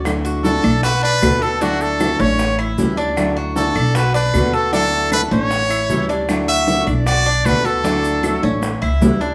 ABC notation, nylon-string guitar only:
X:1
M:4/4
L:1/8
Q:1/4=154
K:D
V:1 name="Nylon-string guitar"
[D,F,A,DE]2 [D,F,A,DE] [A,DE] z2 [B,,D,A,B,F] [A,B,F] | [D,F,A,DE]2 [D,F,A,DE] [A,DE] z2 [E,G,CE] [G,CE] | [D,F,A,DE]2 [D,F,A,DE] [A,DE] z2 [B,,D,A,B,F] [A,B,F] | [D,F,A,DE]2 [D,F,A,DE] [A,DE] z2 [E,G,CE] [G,CE] |
[D,F,A,DE]2 [D,F,A,DE] [A,DE] z2 [B,,D,A,B,F] [A,B,F] | [D,F,A,DE]2 [D,F,A,DE] [A,DE] z2 [E,G,CE] [G,CE] |]